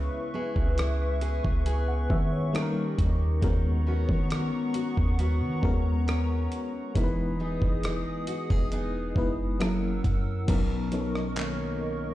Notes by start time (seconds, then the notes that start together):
Already playing: C#3 G#3 B3 C#4 E4 B4 E5 C#6
0.34 B3 E4 G#4
0.56 C#2, kick
0.78 E4, cross-stick, closed hi-hat
1.21 G#4, closed hi-hat
1.45 C#2, kick
1.66 B3 G#4 G#5, closed hi-hat
1.88 F#5
2.10 D#3 E5, kick
2.32 C#5
2.53 D#3 G3 A#3 C#4 D#4 G4 A4 D#5, cross-stick, closed hi-hat
2.62 A#4
2.98 D#2, kick, closed hi-hat
3.42 D#2 D#3 G#3 B3 C#4 F#4 A#4 F#5 A#5 C#6, kick, closed hi-hat
3.87 B3 C#4 F#4
4.09 D#3, kick
4.30 C#4, cross-stick, closed hi-hat
4.74 F#4, closed hi-hat
4.97 D#2, kick
5.19 B3 C#4 F#4 A#5, closed hi-hat
5.41 D#3
5.62 D#2 G#3 B3 C#4 F#4 A#4, kick
6.07 C#4, cross-stick, closed hi-hat
6.52 closed hi-hat
6.95 E1 E3 G#3 B3 D#4 E4 G#4 A#4 D#5 D#6, kick, closed hi-hat
7.04 B4
7.40 B3 D#4 G#4
7.62 E1, kick
7.83 D#4, cross-stick, closed hi-hat
8.27 F#4, closed hi-hat
8.50 E1 G#4, kick
8.72 B3 D#4 G#4, closed hi-hat
9.15 F#1 G#3 B3 D#4 E4 B4, kick
9.59 F#3 A#3 C#4 E4 A4 A#4 F#5 E6, cross-stick, closed hi-hat
9.68 A#4
10.04 F#2, kick, closed hi-hat
10.47 B1 B2 F#3 B3 C#4 D#4 A#4 D#5 C#6, kick, closed hi-hat, crash
10.92 F#3 B3 C#4 D#4 A4, closed hi-hat
11.01 A#4
11.15 cross-stick
11.36 D#3 A#3 C#4, clap, closed hi-hat